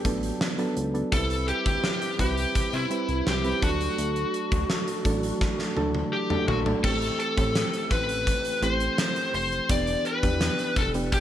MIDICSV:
0, 0, Header, 1, 5, 480
1, 0, Start_track
1, 0, Tempo, 714286
1, 755, Time_signature, 4, 2, 24, 8
1, 7527, End_track
2, 0, Start_track
2, 0, Title_t, "Lead electric guitar"
2, 0, Program_c, 0, 29
2, 760, Note_on_c, 0, 69, 103
2, 981, Note_off_c, 0, 69, 0
2, 998, Note_on_c, 0, 67, 91
2, 1449, Note_off_c, 0, 67, 0
2, 1482, Note_on_c, 0, 67, 96
2, 1841, Note_on_c, 0, 64, 89
2, 1849, Note_off_c, 0, 67, 0
2, 2203, Note_on_c, 0, 67, 87
2, 2209, Note_off_c, 0, 64, 0
2, 2442, Note_off_c, 0, 67, 0
2, 2444, Note_on_c, 0, 66, 79
2, 4093, Note_off_c, 0, 66, 0
2, 4119, Note_on_c, 0, 67, 69
2, 4356, Note_off_c, 0, 67, 0
2, 4358, Note_on_c, 0, 66, 69
2, 4423, Note_off_c, 0, 66, 0
2, 4598, Note_on_c, 0, 69, 85
2, 4831, Note_off_c, 0, 69, 0
2, 4839, Note_on_c, 0, 69, 84
2, 5290, Note_off_c, 0, 69, 0
2, 5322, Note_on_c, 0, 71, 90
2, 5800, Note_off_c, 0, 71, 0
2, 5803, Note_on_c, 0, 72, 94
2, 6275, Note_off_c, 0, 72, 0
2, 6283, Note_on_c, 0, 72, 89
2, 6521, Note_off_c, 0, 72, 0
2, 6524, Note_on_c, 0, 74, 99
2, 6763, Note_off_c, 0, 74, 0
2, 6765, Note_on_c, 0, 71, 92
2, 7244, Note_on_c, 0, 69, 88
2, 7254, Note_off_c, 0, 71, 0
2, 7308, Note_off_c, 0, 69, 0
2, 7485, Note_on_c, 0, 67, 77
2, 7527, Note_off_c, 0, 67, 0
2, 7527, End_track
3, 0, Start_track
3, 0, Title_t, "Synth keys"
3, 0, Program_c, 1, 88
3, 0, Control_c, 1, 64, 127
3, 0, Note_on_c, 1, 54, 70
3, 0, Note_on_c, 1, 59, 64
3, 0, Note_on_c, 1, 62, 65
3, 0, Note_on_c, 1, 69, 79
3, 30, Note_off_c, 1, 54, 0
3, 30, Note_on_c, 1, 54, 81
3, 33, Note_off_c, 1, 59, 0
3, 33, Note_on_c, 1, 59, 71
3, 35, Note_off_c, 1, 62, 0
3, 35, Note_on_c, 1, 62, 72
3, 37, Note_off_c, 1, 69, 0
3, 37, Note_on_c, 1, 69, 92
3, 307, Note_off_c, 1, 54, 0
3, 308, Note_off_c, 1, 59, 0
3, 310, Note_off_c, 1, 62, 0
3, 310, Note_off_c, 1, 69, 0
3, 389, Note_on_c, 1, 54, 85
3, 392, Note_on_c, 1, 59, 71
3, 394, Note_on_c, 1, 62, 77
3, 396, Note_on_c, 1, 69, 94
3, 575, Note_off_c, 1, 54, 0
3, 577, Note_off_c, 1, 59, 0
3, 577, Note_off_c, 1, 62, 0
3, 579, Note_off_c, 1, 69, 0
3, 628, Note_on_c, 1, 54, 69
3, 631, Note_on_c, 1, 59, 59
3, 633, Note_on_c, 1, 62, 61
3, 636, Note_on_c, 1, 69, 77
3, 723, Note_off_c, 1, 54, 0
3, 725, Note_off_c, 1, 59, 0
3, 726, Note_off_c, 1, 62, 0
3, 727, Note_off_c, 1, 69, 0
3, 750, Note_on_c, 1, 55, 71
3, 752, Note_on_c, 1, 60, 60
3, 755, Note_on_c, 1, 64, 64
3, 758, Note_on_c, 1, 71, 75
3, 764, Control_c, 1, 64, 0
3, 884, Control_c, 1, 64, 127
3, 1302, Note_off_c, 1, 55, 0
3, 1303, Note_off_c, 1, 60, 0
3, 1304, Note_off_c, 1, 64, 0
3, 1305, Note_off_c, 1, 71, 0
3, 1467, Note_on_c, 1, 55, 71
3, 1472, Note_on_c, 1, 60, 66
3, 1474, Note_on_c, 1, 64, 63
3, 1477, Note_on_c, 1, 71, 81
3, 1837, Note_off_c, 1, 55, 0
3, 1840, Note_off_c, 1, 60, 0
3, 1840, Note_off_c, 1, 64, 0
3, 1842, Note_off_c, 1, 71, 0
3, 1949, Note_on_c, 1, 55, 69
3, 1952, Note_on_c, 1, 60, 62
3, 1954, Note_on_c, 1, 64, 65
3, 1958, Note_on_c, 1, 71, 74
3, 2226, Note_off_c, 1, 55, 0
3, 2228, Note_off_c, 1, 60, 0
3, 2229, Note_off_c, 1, 64, 0
3, 2231, Note_off_c, 1, 71, 0
3, 2311, Note_on_c, 1, 55, 71
3, 2315, Note_on_c, 1, 60, 67
3, 2318, Note_on_c, 1, 64, 60
3, 2320, Note_on_c, 1, 71, 77
3, 2431, Note_on_c, 1, 54, 72
3, 2433, Note_off_c, 1, 55, 0
3, 2435, Note_off_c, 1, 60, 0
3, 2436, Note_off_c, 1, 64, 0
3, 2436, Note_on_c, 1, 57, 66
3, 2437, Note_off_c, 1, 71, 0
3, 2437, Note_on_c, 1, 62, 68
3, 2439, Note_on_c, 1, 69, 80
3, 2444, Control_c, 1, 64, 0
3, 2564, Control_c, 1, 64, 127
3, 3201, Note_off_c, 1, 54, 0
3, 3203, Note_off_c, 1, 57, 0
3, 3204, Note_off_c, 1, 62, 0
3, 3205, Note_off_c, 1, 69, 0
3, 3395, Note_on_c, 1, 52, 68
3, 3397, Note_on_c, 1, 57, 74
3, 3400, Note_on_c, 1, 62, 75
3, 3403, Note_on_c, 1, 69, 89
3, 3438, Note_off_c, 1, 52, 0
3, 3438, Note_on_c, 1, 54, 78
3, 3762, Note_off_c, 1, 57, 0
3, 3763, Note_off_c, 1, 62, 0
3, 3765, Note_off_c, 1, 69, 0
3, 3782, Note_off_c, 1, 54, 0
3, 3872, Note_on_c, 1, 54, 78
3, 3875, Note_on_c, 1, 57, 73
3, 3876, Note_on_c, 1, 62, 73
3, 3879, Note_on_c, 1, 69, 87
3, 4148, Note_off_c, 1, 54, 0
3, 4149, Note_off_c, 1, 57, 0
3, 4150, Note_off_c, 1, 62, 0
3, 4151, Note_off_c, 1, 69, 0
3, 4232, Note_on_c, 1, 54, 79
3, 4234, Note_on_c, 1, 57, 75
3, 4237, Note_on_c, 1, 62, 75
3, 4239, Note_on_c, 1, 69, 87
3, 4416, Note_off_c, 1, 54, 0
3, 4417, Note_off_c, 1, 57, 0
3, 4419, Note_off_c, 1, 62, 0
3, 4420, Note_off_c, 1, 69, 0
3, 4469, Note_on_c, 1, 54, 80
3, 4473, Note_on_c, 1, 57, 74
3, 4475, Note_on_c, 1, 62, 73
3, 4477, Note_on_c, 1, 69, 87
3, 4563, Note_off_c, 1, 54, 0
3, 4565, Note_off_c, 1, 57, 0
3, 4566, Note_off_c, 1, 62, 0
3, 4568, Note_off_c, 1, 69, 0
3, 4591, Note_on_c, 1, 52, 66
3, 4593, Note_on_c, 1, 57, 59
3, 4597, Note_on_c, 1, 60, 60
3, 4598, Note_on_c, 1, 67, 74
3, 4602, Control_c, 1, 64, 0
3, 4725, Control_c, 1, 64, 127
3, 4867, Note_off_c, 1, 52, 0
3, 4868, Note_off_c, 1, 57, 0
3, 4870, Note_off_c, 1, 60, 0
3, 4871, Note_off_c, 1, 67, 0
3, 4951, Note_on_c, 1, 52, 69
3, 4953, Note_on_c, 1, 57, 65
3, 4956, Note_on_c, 1, 60, 64
3, 4960, Note_on_c, 1, 67, 78
3, 5593, Note_off_c, 1, 52, 0
3, 5594, Note_off_c, 1, 57, 0
3, 5596, Note_off_c, 1, 60, 0
3, 5598, Note_off_c, 1, 67, 0
3, 5791, Note_on_c, 1, 52, 71
3, 5793, Note_on_c, 1, 57, 63
3, 5797, Note_on_c, 1, 60, 66
3, 5799, Note_on_c, 1, 67, 72
3, 6342, Note_off_c, 1, 52, 0
3, 6343, Note_off_c, 1, 57, 0
3, 6345, Note_off_c, 1, 60, 0
3, 6346, Note_off_c, 1, 67, 0
3, 6512, Note_on_c, 1, 52, 66
3, 6515, Note_on_c, 1, 59, 63
3, 6518, Note_on_c, 1, 62, 61
3, 6520, Note_on_c, 1, 67, 76
3, 6525, Control_c, 1, 64, 0
3, 6646, Control_c, 1, 64, 127
3, 6788, Note_off_c, 1, 52, 0
3, 6789, Note_off_c, 1, 59, 0
3, 6791, Note_off_c, 1, 62, 0
3, 6792, Note_off_c, 1, 67, 0
3, 6873, Note_on_c, 1, 52, 74
3, 6875, Note_on_c, 1, 59, 62
3, 6879, Note_on_c, 1, 62, 68
3, 6880, Note_on_c, 1, 67, 83
3, 7240, Note_off_c, 1, 52, 0
3, 7241, Note_off_c, 1, 59, 0
3, 7243, Note_off_c, 1, 62, 0
3, 7244, Note_off_c, 1, 67, 0
3, 7352, Note_on_c, 1, 52, 65
3, 7356, Note_on_c, 1, 59, 61
3, 7358, Note_on_c, 1, 62, 60
3, 7359, Note_on_c, 1, 67, 76
3, 7527, Note_off_c, 1, 52, 0
3, 7527, Note_off_c, 1, 59, 0
3, 7527, Note_off_c, 1, 62, 0
3, 7527, Note_off_c, 1, 67, 0
3, 7527, End_track
4, 0, Start_track
4, 0, Title_t, "Analog synth bass"
4, 0, Program_c, 2, 38
4, 33, Note_on_c, 2, 33, 94
4, 214, Note_off_c, 2, 33, 0
4, 514, Note_on_c, 2, 37, 96
4, 694, Note_off_c, 2, 37, 0
4, 754, Note_on_c, 2, 36, 100
4, 1024, Note_off_c, 2, 36, 0
4, 1114, Note_on_c, 2, 38, 90
4, 1205, Note_off_c, 2, 38, 0
4, 1473, Note_on_c, 2, 36, 91
4, 1654, Note_off_c, 2, 36, 0
4, 1715, Note_on_c, 2, 48, 47
4, 1763, Note_off_c, 2, 48, 0
4, 1834, Note_on_c, 2, 48, 85
4, 1924, Note_off_c, 2, 48, 0
4, 2075, Note_on_c, 2, 36, 86
4, 2165, Note_off_c, 2, 36, 0
4, 2195, Note_on_c, 2, 36, 90
4, 2375, Note_off_c, 2, 36, 0
4, 2436, Note_on_c, 2, 38, 92
4, 2615, Note_off_c, 2, 38, 0
4, 2675, Note_on_c, 2, 38, 98
4, 2855, Note_off_c, 2, 38, 0
4, 3035, Note_on_c, 2, 38, 93
4, 3125, Note_off_c, 2, 38, 0
4, 3394, Note_on_c, 2, 33, 90
4, 3574, Note_off_c, 2, 33, 0
4, 3874, Note_on_c, 2, 38, 84
4, 4054, Note_off_c, 2, 38, 0
4, 4354, Note_on_c, 2, 34, 84
4, 4535, Note_off_c, 2, 34, 0
4, 4596, Note_on_c, 2, 33, 97
4, 4775, Note_off_c, 2, 33, 0
4, 4957, Note_on_c, 2, 45, 98
4, 5136, Note_off_c, 2, 45, 0
4, 5315, Note_on_c, 2, 33, 83
4, 5585, Note_off_c, 2, 33, 0
4, 5793, Note_on_c, 2, 33, 96
4, 5974, Note_off_c, 2, 33, 0
4, 6274, Note_on_c, 2, 29, 92
4, 6454, Note_off_c, 2, 29, 0
4, 6515, Note_on_c, 2, 28, 95
4, 6695, Note_off_c, 2, 28, 0
4, 6876, Note_on_c, 2, 40, 93
4, 7055, Note_off_c, 2, 40, 0
4, 7233, Note_on_c, 2, 28, 90
4, 7503, Note_off_c, 2, 28, 0
4, 7527, End_track
5, 0, Start_track
5, 0, Title_t, "Drums"
5, 33, Note_on_c, 9, 36, 89
5, 33, Note_on_c, 9, 42, 66
5, 100, Note_off_c, 9, 36, 0
5, 100, Note_off_c, 9, 42, 0
5, 154, Note_on_c, 9, 42, 51
5, 221, Note_off_c, 9, 42, 0
5, 275, Note_on_c, 9, 38, 109
5, 343, Note_off_c, 9, 38, 0
5, 393, Note_on_c, 9, 42, 44
5, 461, Note_off_c, 9, 42, 0
5, 515, Note_on_c, 9, 42, 68
5, 582, Note_off_c, 9, 42, 0
5, 637, Note_on_c, 9, 42, 43
5, 704, Note_off_c, 9, 42, 0
5, 754, Note_on_c, 9, 36, 100
5, 755, Note_on_c, 9, 42, 89
5, 822, Note_off_c, 9, 36, 0
5, 822, Note_off_c, 9, 42, 0
5, 875, Note_on_c, 9, 42, 50
5, 942, Note_off_c, 9, 42, 0
5, 994, Note_on_c, 9, 42, 72
5, 1061, Note_off_c, 9, 42, 0
5, 1114, Note_on_c, 9, 42, 44
5, 1115, Note_on_c, 9, 36, 86
5, 1181, Note_off_c, 9, 42, 0
5, 1182, Note_off_c, 9, 36, 0
5, 1234, Note_on_c, 9, 38, 95
5, 1301, Note_off_c, 9, 38, 0
5, 1355, Note_on_c, 9, 42, 54
5, 1422, Note_off_c, 9, 42, 0
5, 1473, Note_on_c, 9, 36, 78
5, 1475, Note_on_c, 9, 42, 68
5, 1541, Note_off_c, 9, 36, 0
5, 1543, Note_off_c, 9, 42, 0
5, 1596, Note_on_c, 9, 42, 49
5, 1663, Note_off_c, 9, 42, 0
5, 1715, Note_on_c, 9, 42, 84
5, 1716, Note_on_c, 9, 36, 84
5, 1782, Note_off_c, 9, 42, 0
5, 1783, Note_off_c, 9, 36, 0
5, 1835, Note_on_c, 9, 42, 47
5, 1902, Note_off_c, 9, 42, 0
5, 1953, Note_on_c, 9, 42, 65
5, 2021, Note_off_c, 9, 42, 0
5, 2074, Note_on_c, 9, 42, 51
5, 2141, Note_off_c, 9, 42, 0
5, 2195, Note_on_c, 9, 38, 100
5, 2263, Note_off_c, 9, 38, 0
5, 2315, Note_on_c, 9, 42, 43
5, 2382, Note_off_c, 9, 42, 0
5, 2436, Note_on_c, 9, 36, 101
5, 2437, Note_on_c, 9, 42, 66
5, 2503, Note_off_c, 9, 36, 0
5, 2504, Note_off_c, 9, 42, 0
5, 2558, Note_on_c, 9, 42, 45
5, 2625, Note_off_c, 9, 42, 0
5, 2677, Note_on_c, 9, 42, 90
5, 2744, Note_off_c, 9, 42, 0
5, 2796, Note_on_c, 9, 42, 50
5, 2863, Note_off_c, 9, 42, 0
5, 2916, Note_on_c, 9, 42, 70
5, 2984, Note_off_c, 9, 42, 0
5, 3036, Note_on_c, 9, 36, 81
5, 3037, Note_on_c, 9, 42, 45
5, 3103, Note_off_c, 9, 36, 0
5, 3104, Note_off_c, 9, 42, 0
5, 3156, Note_on_c, 9, 38, 93
5, 3223, Note_off_c, 9, 38, 0
5, 3277, Note_on_c, 9, 42, 53
5, 3344, Note_off_c, 9, 42, 0
5, 3394, Note_on_c, 9, 36, 85
5, 3396, Note_on_c, 9, 42, 65
5, 3461, Note_off_c, 9, 36, 0
5, 3463, Note_off_c, 9, 42, 0
5, 3516, Note_on_c, 9, 42, 53
5, 3583, Note_off_c, 9, 42, 0
5, 3636, Note_on_c, 9, 38, 49
5, 3637, Note_on_c, 9, 36, 87
5, 3703, Note_off_c, 9, 38, 0
5, 3704, Note_off_c, 9, 36, 0
5, 3755, Note_on_c, 9, 38, 47
5, 3822, Note_off_c, 9, 38, 0
5, 3874, Note_on_c, 9, 48, 63
5, 3941, Note_off_c, 9, 48, 0
5, 3995, Note_on_c, 9, 48, 55
5, 4063, Note_off_c, 9, 48, 0
5, 4235, Note_on_c, 9, 45, 70
5, 4303, Note_off_c, 9, 45, 0
5, 4356, Note_on_c, 9, 43, 84
5, 4423, Note_off_c, 9, 43, 0
5, 4476, Note_on_c, 9, 43, 77
5, 4543, Note_off_c, 9, 43, 0
5, 4595, Note_on_c, 9, 36, 104
5, 4596, Note_on_c, 9, 49, 86
5, 4663, Note_off_c, 9, 36, 0
5, 4663, Note_off_c, 9, 49, 0
5, 4716, Note_on_c, 9, 42, 50
5, 4784, Note_off_c, 9, 42, 0
5, 4836, Note_on_c, 9, 42, 76
5, 4904, Note_off_c, 9, 42, 0
5, 4956, Note_on_c, 9, 36, 86
5, 4957, Note_on_c, 9, 42, 46
5, 5024, Note_off_c, 9, 36, 0
5, 5024, Note_off_c, 9, 42, 0
5, 5077, Note_on_c, 9, 38, 98
5, 5077, Note_on_c, 9, 42, 91
5, 5144, Note_off_c, 9, 38, 0
5, 5144, Note_off_c, 9, 42, 0
5, 5197, Note_on_c, 9, 42, 55
5, 5265, Note_off_c, 9, 42, 0
5, 5314, Note_on_c, 9, 36, 84
5, 5316, Note_on_c, 9, 42, 71
5, 5382, Note_off_c, 9, 36, 0
5, 5383, Note_off_c, 9, 42, 0
5, 5436, Note_on_c, 9, 42, 51
5, 5503, Note_off_c, 9, 42, 0
5, 5557, Note_on_c, 9, 36, 83
5, 5557, Note_on_c, 9, 42, 83
5, 5624, Note_off_c, 9, 42, 0
5, 5625, Note_off_c, 9, 36, 0
5, 5677, Note_on_c, 9, 42, 49
5, 5744, Note_off_c, 9, 42, 0
5, 5796, Note_on_c, 9, 42, 68
5, 5863, Note_off_c, 9, 42, 0
5, 5915, Note_on_c, 9, 42, 51
5, 5983, Note_off_c, 9, 42, 0
5, 6036, Note_on_c, 9, 42, 85
5, 6037, Note_on_c, 9, 38, 107
5, 6103, Note_off_c, 9, 42, 0
5, 6104, Note_off_c, 9, 38, 0
5, 6155, Note_on_c, 9, 42, 47
5, 6222, Note_off_c, 9, 42, 0
5, 6277, Note_on_c, 9, 46, 69
5, 6344, Note_off_c, 9, 46, 0
5, 6398, Note_on_c, 9, 42, 46
5, 6465, Note_off_c, 9, 42, 0
5, 6515, Note_on_c, 9, 36, 109
5, 6515, Note_on_c, 9, 42, 94
5, 6582, Note_off_c, 9, 36, 0
5, 6582, Note_off_c, 9, 42, 0
5, 6634, Note_on_c, 9, 42, 51
5, 6701, Note_off_c, 9, 42, 0
5, 6755, Note_on_c, 9, 42, 73
5, 6822, Note_off_c, 9, 42, 0
5, 6875, Note_on_c, 9, 36, 86
5, 6875, Note_on_c, 9, 42, 46
5, 6942, Note_off_c, 9, 42, 0
5, 6943, Note_off_c, 9, 36, 0
5, 6994, Note_on_c, 9, 38, 94
5, 6994, Note_on_c, 9, 42, 88
5, 7061, Note_off_c, 9, 38, 0
5, 7061, Note_off_c, 9, 42, 0
5, 7115, Note_on_c, 9, 42, 57
5, 7182, Note_off_c, 9, 42, 0
5, 7233, Note_on_c, 9, 36, 88
5, 7234, Note_on_c, 9, 42, 73
5, 7301, Note_off_c, 9, 36, 0
5, 7302, Note_off_c, 9, 42, 0
5, 7354, Note_on_c, 9, 42, 53
5, 7421, Note_off_c, 9, 42, 0
5, 7474, Note_on_c, 9, 42, 87
5, 7476, Note_on_c, 9, 36, 85
5, 7527, Note_off_c, 9, 36, 0
5, 7527, Note_off_c, 9, 42, 0
5, 7527, End_track
0, 0, End_of_file